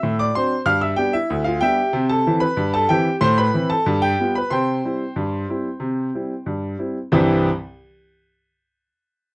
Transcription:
0.00 0.29 A2 medium
0.00 0.15 E5 medium
0.00 0.15 E6 loud
0.19 0.33 D5 medium
0.19 0.33 D6 loud
0.35 0.53 F#3 medium
0.35 0.53 C4 medium
0.35 0.53 D4 medium
0.35 0.64 C5 medium
0.35 0.60 C6 loud
0.66 0.92 G2 medium
0.66 0.80 F5 loud
0.66 0.81 F6 loud
0.81 0.96 E5 medium
0.81 0.97 E6 medium
0.96 1.14 G3 medium
0.96 1.15 B3 medium
0.96 1.15 D4 medium
0.96 1.12 G4 medium
0.96 1.12 G5 loud
1.13 1.43 E4 medium
1.13 1.43 E5 loud
1.30 1.56 D2 medium
1.44 1.60 F4 medium
1.44 1.60 F5 loud
1.61 1.78 G3 medium
1.61 1.79 B3 medium
1.61 1.79 D4 medium
1.61 2.06 G4 medium
1.61 2.06 E5 loud
1.61 2.06 G5 loud
1.93 2.20 C3 loud
2.09 2.39 A4 medium
2.09 2.35 A5 loud
2.27 2.44 E3 medium
2.27 2.44 C4 medium
2.27 2.44 E4 medium
2.40 2.71 B4 medium
2.40 2.71 B5 loud
2.57 2.84 G2 medium
2.74 2.88 A4 medium
2.74 2.89 A5 loud
2.89 3.07 E3 medium
2.89 3.07 C4 medium
2.89 3.07 E4 medium
2.89 3.19 G4 medium
2.89 3.14 G5 loud
3.21 3.48 A2 loud
3.21 3.36 C5 loud
3.21 3.37 C6 loud
3.38 3.68 B4 medium
3.38 3.68 B5 loud
3.54 3.71 E3 medium
3.54 3.72 C4 medium
3.54 3.72 E4 medium
3.70 4.00 A4 medium
3.70 3.95 A5 loud
3.86 4.13 G2 loud
4.02 4.33 G4 medium
4.02 4.32 G5 loud
4.20 4.37 G3 medium
4.20 4.37 B3 medium
4.20 4.38 F4 medium
4.35 4.51 B4 medium
4.35 4.51 B5 loud
4.50 4.78 C3 medium
4.50 6.43 C5 medium
4.50 6.43 G5 medium
4.50 6.42 C6 loud
4.85 5.02 G3 soft
4.85 5.03 C4 medium
4.85 5.03 E4 medium
5.16 5.44 G2 medium
5.49 5.67 G3 soft
5.49 5.67 C4 soft
5.49 5.68 E4 medium
5.80 6.08 C3 medium
6.15 6.32 G3 medium
6.15 6.32 C4 soft
6.15 6.33 E4 soft
6.46 6.74 G2 medium
6.79 6.96 G3 medium
6.79 6.97 C4 soft
6.79 6.97 E4 soft
7.12 7.48 C2 loud
7.12 7.48 G2 loud
7.12 7.48 E3 loud
7.12 7.47 G3 loud
7.12 7.48 C4 loud
7.12 7.48 E4 loud

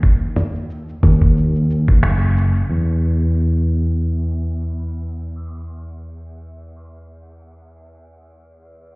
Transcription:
0.00 0.94 D#2 medium
0.00 kick loud
0.00 cabasa soft
0.36 mid tom medium
0.36 cabasa medium
0.55 cabasa soft
0.70 cabasa soft
0.89 cabasa soft
1.03 2.02 D#2 medium
1.03 kick loud
1.03 mid tom medium
1.03 cabasa medium
1.22 kick medium
1.22 cabasa soft
1.37 cabasa soft
1.55 cabasa soft
1.70 cabasa medium
1.88 kick loud
1.88 cabasa soft
2.03 2.61 F#1 medium
2.03 finger snap medium
2.03 cabasa soft
2.22 cabasa soft
2.37 cabasa medium
2.55 cabasa soft
2.69 8.96 E2 medium

